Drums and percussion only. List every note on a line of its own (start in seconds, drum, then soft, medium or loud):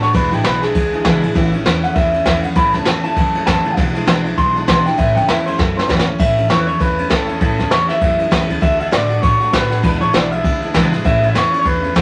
0.03 snare soft
0.03 ride medium
0.14 kick loud
0.14 ride medium
0.32 ride medium
0.44 snare loud
0.44 ride medium
0.63 snare soft
0.63 ride medium
0.75 kick loud
0.75 ride loud
0.93 ride medium
1.05 kick medium
1.05 snare loud
1.05 ride loud
1.23 ride medium
1.36 kick loud
1.36 ride medium
1.53 ride medium
1.66 snare loud
1.66 ride medium
1.84 snare soft
1.84 ride medium
1.95 kick loud
1.95 ride medium
2.14 ride medium
2.26 kick medium
2.26 snare loud
2.26 ride loud
2.43 ride medium
2.55 kick loud
2.55 snare soft
2.55 ride medium
2.74 snare soft
2.74 ride medium
2.85 snare loud
2.85 ride medium
3.04 ride medium
3.17 kick loud
3.17 ride loud
3.35 ride medium
3.47 kick medium
3.47 snare loud
3.47 ride loud
3.65 ride medium
3.77 kick loud
3.77 snare soft
3.77 ride medium
3.95 ride medium
4.07 snare loud
4.07 ride medium
4.25 ride medium
4.37 kick loud
4.37 ride medium
4.56 ride medium
4.68 kick loud
4.68 snare loud
4.68 ride loud
4.86 snare soft
4.86 ride medium
4.98 kick loud
4.98 ride medium
5.17 ride medium
5.28 snare loud
5.28 ride medium
5.47 ride medium
5.59 kick loud
5.59 snare medium
5.79 snare medium
5.89 kick medium
5.89 snare loud
5.99 snare loud
6.19 kick loud
6.19 crash loud
6.38 ride medium
6.50 snare loud
6.50 ride medium
6.68 ride medium
6.80 kick loud
6.80 ride medium
6.99 ride medium
7.10 kick medium
7.10 snare loud
7.10 ride loud
7.29 ride medium
7.41 kick loud
7.41 ride medium
7.59 snare soft
7.59 ride medium
7.71 snare loud
7.71 ride medium
7.89 snare soft
7.89 ride medium
8.01 kick loud
8.01 ride medium
8.19 ride medium
8.32 kick medium
8.32 snare loud
8.32 ride loud
8.50 ride medium
8.62 kick loud
8.62 ride medium
8.80 ride medium
8.92 snare loud
8.92 ride medium
9.11 ride medium
9.23 kick loud
9.23 ride medium
9.41 ride medium
9.53 kick medium
9.53 snare loud
9.53 ride medium
9.72 snare soft
9.72 ride medium
9.84 kick loud
9.84 ride medium
10.02 ride medium
10.14 snare loud
10.14 ride medium
10.32 ride medium
10.44 kick loud
10.44 ride medium
10.62 ride medium
10.74 kick medium
10.74 snare loud
10.74 ride loud
10.93 snare soft
10.93 ride medium
11.05 kick loud
11.05 ride medium
11.23 ride medium
11.35 snare loud
11.35 ride medium
11.54 ride medium
11.65 kick loud
11.65 ride medium
11.84 ride medium
11.96 kick loud
11.96 snare loud
11.96 ride medium